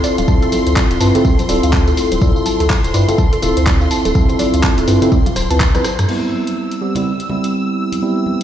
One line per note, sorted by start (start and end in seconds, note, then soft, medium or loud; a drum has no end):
0.00 0.25 C4 medium
0.00 0.26 E4 medium
0.00 0.26 F4 medium
0.00 0.26 A4 loud
0.00 0.14 D5 loud
0.00 6.10 C6 medium
0.00 open hi-hat loud
0.00 tambourine medium
0.18 0.26 D1 medium
0.18 0.22 F5 medium
0.18 closed hi-hat medium
0.18 tambourine soft
0.18 high conga medium
0.28 0.39 D2 loud
0.28 0.98 C4 medium
0.28 0.98 E4 medium
0.28 0.98 F4 medium
0.28 0.98 A4 medium
0.28 0.34 A5 medium
0.28 kick loud
0.28 tambourine soft
0.42 0.49 A4 loud
0.42 closed hi-hat soft
0.42 tambourine soft
0.52 0.66 A4 medium
0.52 open hi-hat loud
0.52 tambourine medium
0.52 high conga medium
0.67 0.74 D2 medium
0.67 0.73 C5 medium
0.67 closed hi-hat medium
0.67 tambourine soft
0.76 0.86 D5 loud
0.76 kick loud
0.76 clap loud
0.76 tambourine soft
0.91 0.98 D1 loud
0.91 0.95 F5 medium
0.91 closed hi-hat medium
0.91 tambourine soft
1.00 1.12 G2 medium
1.00 1.12 C4 medium
1.00 1.12 E4 medium
1.00 1.13 F4 medium
1.00 1.13 B4 medium
1.00 1.07 A5 medium
1.00 open hi-hat loud
1.00 tambourine medium
1.15 1.29 C4 medium
1.15 1.29 E4 medium
1.15 1.29 F4 medium
1.15 1.22 A4 loud
1.15 1.29 A4 loud
1.15 closed hi-hat medium
1.15 tambourine soft
1.15 low conga medium
1.25 1.36 D2 medium
1.25 1.38 A4 medium
1.25 kick loud
1.25 tambourine soft
1.39 1.46 C5 medium
1.39 closed hi-hat medium
1.39 tambourine soft
1.39 high conga medium
1.49 1.60 D1 medium
1.49 2.19 C4 medium
1.49 2.19 E4 medium
1.49 2.19 F4 medium
1.49 2.19 A4 loud
1.49 1.59 D5 loud
1.49 open hi-hat loud
1.49 tambourine medium
1.63 1.94 D2 loud
1.63 1.67 F5 medium
1.63 closed hi-hat medium
1.63 tambourine soft
1.73 1.79 A5 medium
1.73 kick loud
1.73 clap loud
1.73 tambourine soft
1.88 1.94 A4 loud
1.88 closed hi-hat soft
1.88 tambourine soft
1.97 2.11 A4 medium
1.97 open hi-hat loud
1.97 tambourine medium
2.12 2.19 D1 medium
2.12 2.19 C5 medium
2.12 closed hi-hat medium
2.12 tambourine soft
2.12 high conga medium
2.21 2.33 D2 loud
2.21 2.92 C4 medium
2.21 2.92 E4 medium
2.21 2.92 F4 medium
2.21 2.92 A4 medium
2.21 2.32 D5 loud
2.21 kick loud
2.21 tambourine soft
2.36 2.40 F5 medium
2.36 tambourine soft
2.46 2.52 A5 medium
2.46 open hi-hat loud
2.46 tambourine medium
2.46 high conga medium
2.60 2.68 D2 medium
2.60 2.67 A4 loud
2.60 closed hi-hat medium
2.60 tambourine soft
2.70 kick medium
2.70 clap loud
2.70 tambourine soft
2.84 2.92 D1 loud
2.84 2.91 C5 medium
2.84 closed hi-hat medium
2.84 tambourine soft
2.94 3.05 G2 medium
2.94 3.06 C4 medium
2.94 3.06 E4 medium
2.94 3.06 F4 medium
2.94 3.06 B4 medium
2.94 3.04 D5 loud
2.94 open hi-hat loud
2.94 tambourine medium
3.08 3.23 C4 medium
3.08 3.23 E4 medium
3.08 3.23 F4 medium
3.08 3.23 A4 loud
3.08 3.13 F5 medium
3.08 closed hi-hat medium
3.08 tambourine soft
3.08 low conga medium
3.18 3.29 D2 medium
3.18 3.24 A5 medium
3.18 kick loud
3.18 tambourine soft
3.33 3.40 A4 loud
3.33 closed hi-hat medium
3.42 3.54 D1 medium
3.42 4.13 C4 loud
3.42 4.13 E4 medium
3.42 4.13 F4 medium
3.42 3.56 A4 medium
3.42 4.13 A4 loud
3.42 open hi-hat loud
3.42 tambourine medium
3.42 low conga medium
3.57 3.87 D2 loud
3.57 3.64 C5 medium
3.57 closed hi-hat medium
3.57 tambourine soft
3.67 3.77 D5 loud
3.67 kick loud
3.67 clap loud
3.67 tambourine soft
3.81 3.85 F5 medium
3.81 tambourine soft
3.91 3.97 A5 medium
3.91 open hi-hat loud
3.91 tambourine medium
4.05 4.13 D1 medium
4.05 4.12 A4 loud
4.05 closed hi-hat medium
4.05 tambourine soft
4.05 high conga medium
4.15 4.26 D2 loud
4.15 4.85 C4 medium
4.15 4.85 E4 medium
4.15 4.85 F4 medium
4.15 4.86 A4 medium
4.15 kick loud
4.15 tambourine soft
4.29 4.36 C5 medium
4.29 closed hi-hat soft
4.29 tambourine soft
4.29 low conga medium
4.39 4.49 D5 loud
4.39 open hi-hat loud
4.39 tambourine medium
4.39 high conga medium
4.54 4.61 D2 medium
4.54 4.58 F5 medium
4.54 closed hi-hat medium
4.54 tambourine soft
4.63 4.69 A5 medium
4.63 kick loud
4.63 clap loud
4.63 tambourine soft
4.78 4.85 D1 loud
4.78 4.85 A4 loud
4.78 closed hi-hat medium
4.78 tambourine soft
4.87 4.99 G2 medium
4.87 5.00 C4 medium
4.87 5.00 E4 medium
4.87 5.00 F4 medium
4.87 5.01 A4 medium
4.87 5.00 B4 loud
4.87 open hi-hat loud
4.87 tambourine medium
5.02 5.16 C4 medium
5.02 5.17 E4 medium
5.02 5.17 F4 medium
5.02 5.17 A4 loud
5.02 5.09 C5 medium
5.02 closed hi-hat medium
5.02 tambourine soft
5.02 low conga medium
5.12 5.23 D2 medium
5.12 5.22 D5 loud
5.12 kick loud
5.12 tambourine soft
5.26 5.30 F5 medium
5.26 closed hi-hat medium
5.26 tambourine soft
5.26 high conga medium
5.36 5.47 D1 medium
5.36 5.42 C5 medium
5.36 cross-stick medium
5.36 open hi-hat loud
5.36 tambourine medium
5.50 5.60 D2 loud
5.50 5.58 C4 medium
5.50 5.59 E4 medium
5.50 5.59 F4 medium
5.50 5.59 B4 medium
5.50 5.57 A5 medium
5.50 closed hi-hat medium
5.50 tambourine soft
5.60 5.71 D2 medium
5.60 5.70 A5 loud
5.60 kick loud
5.60 cross-stick medium
5.60 clap loud
5.60 tambourine soft
5.75 5.82 A1 loud
5.75 5.83 C4 medium
5.75 5.83 E4 medium
5.75 5.83 F4 medium
5.75 5.83 B4 medium
5.75 5.81 D5 medium
5.75 cross-stick medium
5.75 closed hi-hat soft
5.75 tambourine soft
5.75 high conga medium
5.84 5.94 C5 medium
5.84 cross-stick medium
5.84 open hi-hat loud
5.84 tambourine medium
5.99 6.06 G2 loud
5.99 6.06 A4 medium
5.99 cross-stick medium
5.99 closed hi-hat medium
5.99 tambourine soft
5.99 high conga medium
6.08 6.79 G3 medium
6.08 6.79 B3 medium
6.08 6.79 C4 medium
6.08 6.79 E4 medium
6.08 8.43 E6 medium
6.08 crash medium
6.33 high conga medium
6.47 closed hi-hat medium
6.71 closed hi-hat soft
6.81 6.93 G3 medium
6.81 6.93 B3 medium
6.81 6.93 C4 medium
6.81 6.93 G4 medium
6.95 7.10 G3 medium
6.95 7.10 B3 medium
6.95 7.10 C4 medium
6.95 7.10 E4 loud
6.95 closed hi-hat medium
6.95 low conga medium
7.20 closed hi-hat medium
7.29 8.00 G3 loud
7.29 8.00 B3 medium
7.29 8.00 C4 medium
7.29 8.00 E4 loud
7.29 low conga medium
7.44 closed hi-hat medium
7.92 closed hi-hat medium
7.92 high conga medium
8.02 8.43 G3 medium
8.02 8.43 B3 medium
8.02 8.43 C4 medium
8.02 8.43 E4 medium
8.26 high conga medium